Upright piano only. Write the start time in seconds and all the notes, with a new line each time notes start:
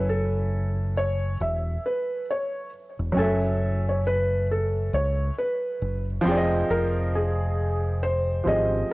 Already playing: F#3 C#4 E4 A4 G#5
3.12 F#3 C#4
3.17 A4 G#5
3.21 E5
6.21 F3 C4
6.26 G#4 G5
6.30 D5
6.37 D#5
8.44 F3 C4 G4 G#4
8.49 D#5